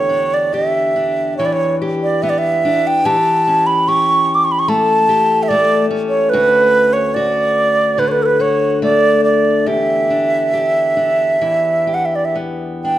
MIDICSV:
0, 0, Header, 1, 3, 480
1, 0, Start_track
1, 0, Tempo, 846262
1, 1742, Time_signature, 4, 2, 24, 8
1, 1743, Tempo, 810811
1, 3183, Tempo, 827586
1, 5103, Tempo, 864553
1, 6543, Tempo, 958466
1, 7333, End_track
2, 0, Start_track
2, 0, Title_t, "Flute"
2, 0, Program_c, 0, 73
2, 0, Note_on_c, 0, 73, 52
2, 192, Note_on_c, 0, 74, 51
2, 200, Note_off_c, 0, 73, 0
2, 304, Note_on_c, 0, 76, 59
2, 313, Note_off_c, 0, 74, 0
2, 775, Note_off_c, 0, 76, 0
2, 779, Note_on_c, 0, 73, 59
2, 826, Note_on_c, 0, 74, 49
2, 834, Note_off_c, 0, 73, 0
2, 866, Note_on_c, 0, 73, 58
2, 874, Note_off_c, 0, 74, 0
2, 1000, Note_off_c, 0, 73, 0
2, 1151, Note_on_c, 0, 74, 60
2, 1262, Note_on_c, 0, 76, 62
2, 1271, Note_off_c, 0, 74, 0
2, 1302, Note_on_c, 0, 74, 55
2, 1311, Note_off_c, 0, 76, 0
2, 1351, Note_on_c, 0, 76, 66
2, 1360, Note_off_c, 0, 74, 0
2, 1628, Note_on_c, 0, 79, 64
2, 1636, Note_off_c, 0, 76, 0
2, 1734, Note_on_c, 0, 81, 74
2, 1743, Note_off_c, 0, 79, 0
2, 2094, Note_on_c, 0, 83, 69
2, 2103, Note_off_c, 0, 81, 0
2, 2221, Note_on_c, 0, 85, 75
2, 2230, Note_off_c, 0, 83, 0
2, 2497, Note_on_c, 0, 86, 66
2, 2506, Note_off_c, 0, 85, 0
2, 2554, Note_on_c, 0, 85, 66
2, 2563, Note_off_c, 0, 86, 0
2, 2597, Note_on_c, 0, 83, 63
2, 2606, Note_off_c, 0, 85, 0
2, 2642, Note_on_c, 0, 85, 66
2, 2651, Note_off_c, 0, 83, 0
2, 2699, Note_on_c, 0, 81, 79
2, 2708, Note_off_c, 0, 85, 0
2, 3137, Note_on_c, 0, 76, 58
2, 3146, Note_off_c, 0, 81, 0
2, 3171, Note_on_c, 0, 74, 77
2, 3180, Note_off_c, 0, 76, 0
2, 3385, Note_off_c, 0, 74, 0
2, 3521, Note_on_c, 0, 73, 72
2, 3641, Note_on_c, 0, 71, 80
2, 3650, Note_off_c, 0, 73, 0
2, 4010, Note_on_c, 0, 73, 69
2, 4019, Note_off_c, 0, 71, 0
2, 4132, Note_on_c, 0, 74, 70
2, 4141, Note_off_c, 0, 73, 0
2, 4625, Note_on_c, 0, 71, 64
2, 4633, Note_off_c, 0, 74, 0
2, 4677, Note_on_c, 0, 73, 44
2, 4686, Note_off_c, 0, 71, 0
2, 4696, Note_on_c, 0, 71, 63
2, 4705, Note_off_c, 0, 73, 0
2, 4761, Note_on_c, 0, 69, 45
2, 4770, Note_off_c, 0, 71, 0
2, 4775, Note_on_c, 0, 71, 65
2, 4784, Note_off_c, 0, 69, 0
2, 4868, Note_on_c, 0, 73, 63
2, 4877, Note_off_c, 0, 71, 0
2, 5107, Note_off_c, 0, 73, 0
2, 5110, Note_on_c, 0, 74, 69
2, 5325, Note_off_c, 0, 74, 0
2, 5338, Note_on_c, 0, 74, 59
2, 5578, Note_on_c, 0, 76, 62
2, 5586, Note_off_c, 0, 74, 0
2, 6809, Note_on_c, 0, 78, 47
2, 6817, Note_off_c, 0, 76, 0
2, 6866, Note_on_c, 0, 76, 43
2, 6873, Note_off_c, 0, 78, 0
2, 6916, Note_on_c, 0, 74, 45
2, 6924, Note_off_c, 0, 76, 0
2, 6964, Note_on_c, 0, 76, 44
2, 6972, Note_off_c, 0, 74, 0
2, 7019, Note_off_c, 0, 76, 0
2, 7257, Note_on_c, 0, 79, 52
2, 7333, Note_off_c, 0, 79, 0
2, 7333, End_track
3, 0, Start_track
3, 0, Title_t, "Steel-string acoustic guitar"
3, 0, Program_c, 1, 25
3, 0, Note_on_c, 1, 40, 47
3, 0, Note_on_c, 1, 50, 42
3, 0, Note_on_c, 1, 67, 40
3, 53, Note_on_c, 1, 62, 38
3, 303, Note_off_c, 1, 67, 0
3, 305, Note_on_c, 1, 67, 41
3, 536, Note_off_c, 1, 62, 0
3, 543, Note_on_c, 1, 62, 39
3, 770, Note_off_c, 1, 50, 0
3, 791, Note_on_c, 1, 52, 46
3, 1028, Note_off_c, 1, 67, 0
3, 1030, Note_on_c, 1, 67, 48
3, 1267, Note_on_c, 1, 59, 42
3, 1495, Note_off_c, 1, 62, 0
3, 1502, Note_on_c, 1, 62, 41
3, 1728, Note_off_c, 1, 52, 0
3, 1730, Note_on_c, 1, 52, 56
3, 1734, Note_off_c, 1, 67, 0
3, 1736, Note_on_c, 1, 67, 50
3, 1739, Note_off_c, 1, 40, 0
3, 1788, Note_off_c, 1, 62, 0
3, 1789, Note_off_c, 1, 59, 0
3, 1981, Note_on_c, 1, 61, 44
3, 2215, Note_off_c, 1, 67, 0
3, 2223, Note_on_c, 1, 67, 47
3, 2696, Note_on_c, 1, 57, 58
3, 2929, Note_off_c, 1, 67, 0
3, 2936, Note_on_c, 1, 67, 51
3, 2954, Note_off_c, 1, 61, 0
3, 3180, Note_off_c, 1, 57, 0
3, 3182, Note_on_c, 1, 57, 50
3, 3415, Note_on_c, 1, 61, 49
3, 3655, Note_off_c, 1, 52, 0
3, 3658, Note_off_c, 1, 67, 0
3, 3663, Note_on_c, 1, 38, 68
3, 3667, Note_on_c, 1, 66, 58
3, 4136, Note_off_c, 1, 66, 0
3, 4143, Note_on_c, 1, 66, 50
3, 4617, Note_on_c, 1, 50, 55
3, 4634, Note_off_c, 1, 61, 0
3, 4852, Note_off_c, 1, 66, 0
3, 4859, Note_on_c, 1, 66, 47
3, 5104, Note_off_c, 1, 57, 0
3, 5106, Note_on_c, 1, 57, 44
3, 5571, Note_off_c, 1, 38, 0
3, 5573, Note_on_c, 1, 40, 55
3, 5576, Note_off_c, 1, 66, 0
3, 5579, Note_on_c, 1, 67, 44
3, 5627, Note_off_c, 1, 57, 0
3, 5818, Note_on_c, 1, 62, 41
3, 6050, Note_off_c, 1, 67, 0
3, 6057, Note_on_c, 1, 67, 41
3, 6295, Note_off_c, 1, 62, 0
3, 6298, Note_on_c, 1, 62, 37
3, 6543, Note_off_c, 1, 50, 0
3, 6545, Note_on_c, 1, 52, 42
3, 6768, Note_off_c, 1, 67, 0
3, 6774, Note_on_c, 1, 67, 40
3, 7016, Note_on_c, 1, 59, 36
3, 7260, Note_off_c, 1, 62, 0
3, 7262, Note_on_c, 1, 62, 33
3, 7333, Note_off_c, 1, 40, 0
3, 7333, Note_off_c, 1, 52, 0
3, 7333, Note_off_c, 1, 59, 0
3, 7333, Note_off_c, 1, 62, 0
3, 7333, Note_off_c, 1, 67, 0
3, 7333, End_track
0, 0, End_of_file